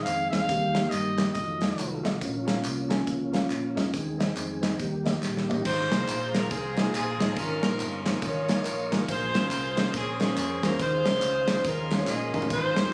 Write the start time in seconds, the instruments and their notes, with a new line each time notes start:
Already playing: tonewheel organ D#3 G#3 C4 G#4
0.03 fingered electric bass F2, trumpet F5, clap, closed hi-hat, tambourine
0.30 fingered electric bass E2, grand piano C4 D#4, trumpet F5, kick, snare, closed hi-hat, tambourine
0.34 grand piano G#4 D#5
0.49 fingered electric bass D#2, grand piano D#3, tonewheel organ G3 A#3 G4, kick, closed hi-hat, tambourine
0.74 grand piano A#3 D#4 G4 D#5, snare, closed hi-hat, tambourine
0.90 fingered electric bass G2, trumpet D#5, clap, closed hi-hat, tambourine
1.18 grand piano A#3 D#4 G4 D#5, snare, clap, closed hi-hat, tambourine
1.33 fingered electric bass F2, tonewheel organ F#3 A3 F4, trumpet D#5, kick, closed hi-hat, tambourine
1.61 grand piano A3 F4 F#4 D#5, snare, closed hi-hat, tambourine
1.79 fingered electric bass C2, clap, closed hi-hat, tambourine
2.03 fingered electric bass B1, grand piano A3 F4 F#4 D#5, kick, snare, closed hi-hat, tambourine
2.20 fingered electric bass A#1, grand piano A#2, tonewheel organ F3 A#3 C#4, kick, closed hi-hat, tambourine
2.45 grand piano C#4 F4 A#4 F5, snare, closed hi-hat, tambourine
2.64 fingered electric bass C2, clap, closed hi-hat, tambourine
2.88 grand piano C#4 F4 A#4 G#5, snare, clap, closed hi-hat, tambourine
3.07 fingered electric bass C#2, kick, closed hi-hat, tambourine
3.32 grand piano C#4 F4 A#4 F5, snare, closed hi-hat, tambourine
3.50 fingered electric bass A#1, clap, closed hi-hat, tambourine
3.75 fingered electric bass F1, grand piano C#4 F4 A#4 D#5, kick, snare, closed hi-hat, tambourine
3.93 fingered electric bass D#2, grand piano D#3, tonewheel organ D#3 G#3 C4 G#4, kick, closed hi-hat, tambourine
4.18 grand piano C4 D#4 G#4 D#5, snare, closed hi-hat, tambourine
4.36 fingered electric bass F2, clap, closed hi-hat, tambourine
4.62 grand piano C4 D#4 G#4 D#5, snare, clap, closed hi-hat, tambourine
4.79 fingered electric bass D#2, grand piano D#3, tonewheel organ G3 A#3 G4, kick, closed hi-hat, tambourine
5.04 grand piano A#3 D#4 G4 D#5, snare, closed hi-hat, tambourine
5.22 fingered electric bass A#1, snare, clap, tambourine
5.37 snare
5.48 fingered electric bass A1, grand piano A#3 D#4 G4 D#5, floor tom, tambourine
5.65 fingered electric bass G#1, grand piano G#2, saxophone section D#4 F4 C5, tonewheel organ G#4 C5 F5 A#5, kick, crash, tambourine
5.91 fingered electric bass C2, grand piano A#3 D#4 F4 G#4 C5, snare, ride, tambourine
5.99 grand piano A#3 D#4 F4 G#4 C5
6.08 fingered electric bass A#1, clap, ride, tambourine
6.33 grand piano A#3 D#4 F4 G#4 A#4, saxophone section A#4, snare, clap, ride, tambourine
6.51 fingered electric bass C2, saxophone section C4 F4 G#4, kick, ride, tambourine
6.77 grand piano A#3 D#4 F4 G#4 D#5, snare, ride, tambourine
6.84 grand piano A#3 D#4 F4 G#4 C5
6.94 fingered electric bass A#1, saxophone section C4 F4 G#4, clap, ride, tambourine
7.19 fingered electric bass A1, grand piano A#3 D#4 F4 G#4 D#5, kick, snare, ride, tambourine
7.36 fingered electric bass G#1, grand piano G#2, saxophone section C#4 F4 A#4, tonewheel organ A#4 D#5 C#6, kick, ride, tambourine
7.62 fingered electric bass A#1, grand piano A#3 D#4 F4 G#4 C#5, saxophone section C#4 F4 A#4, snare, ride, tambourine
7.70 grand piano A#3 D#4 F4 G#4 C5
7.80 fingered electric bass G1, clap, ride, tambourine
8.05 grand piano A#3 D#4 F4 G#4 C5, snare, clap, ride, tambourine
8.22 fingered electric bass G#1, saxophone section F4 A#4 C#5, kick, ride, tambourine
8.48 grand piano A#3 D#4 F4 G#4 C#5, snare, ride, tambourine
8.56 grand piano A#3 D#4 F4 G#4 C#5
8.65 fingered electric bass A#1, clap, ride, tambourine
8.91 fingered electric bass G#1, grand piano A#3 D#4 F4 G#4 A#4, kick, snare, ride, tambourine
9.08 fingered electric bass A#1, grand piano A#2, saxophone section F4 G#4 C5, tonewheel organ C5 G#5 C6, kick, ride, tambourine
9.34 fingered electric bass G#1, grand piano A#3 C#4 F4 G#4 C5, snare, ride, tambourine
9.42 grand piano A#3 C#4 F4 G#4 C5
9.51 fingered electric bass C2, clap, ride, tambourine
9.76 grand piano A#3 C#4 F4 G#4 D#5, snare, clap, ride, tambourine
9.94 fingered electric bass A#1, saxophone section C4 C#4 G#4, kick, ride, tambourine
10.20 grand piano A#3 C#4 F4 G#4 D#5, saxophone section G#4, snare, ride, tambourine
10.27 grand piano A#3 C#4 F4 G#4 C5
10.37 fingered electric bass F2, saxophone section G#4, clap, ride, tambourine
10.63 fingered electric bass E2, grand piano A#3 C#4 F4 G#4 C5, saxophone section A#4, kick, snare, ride, tambourine
10.79 fingered electric bass D#2, grand piano D#3, saxophone section F4 G#4 C5, tonewheel organ G#4 D#5 F5, kick, ride, tambourine
11.05 fingered electric bass C2, grand piano G#3 C#4 D#4 F4 A#4, snare, ride, tambourine
11.13 grand piano G#3 C#4 D#4 F4 C#5
11.22 fingered electric bass C#2, clap, ride, tambourine
11.47 grand piano G#3 C#4 D#4 F4 C5, snare, clap, ride, tambourine
11.64 fingered electric bass D#2, saxophone section C#4 F4 A#4, kick, ride, tambourine
11.90 grand piano G#3 C#4 D#4 F4 A#4, saxophone section C#5, snare, ride, tambourine
11.98 grand piano G#3 C#4 D#4 F4 C5
12.07 fingered electric bass A#1, saxophone section G#4 A#4 D#5, snare, clap, tambourine
12.33 fingered electric bass A1, grand piano G#3 C#4 D#4 F4 A#4, mid tom, tambourine
12.42 floor tom
12.50 fingered electric bass G#1, grand piano G#2, saxophone section D#4 F4 C5, tonewheel organ A#4 G#5 C6, kick, ride, tambourine
12.76 fingered electric bass F1, grand piano G#3 C4 D#4 F4 A#4, snare, ride, tambourine
12.84 grand piano G#3 C4 D#4 F4 G4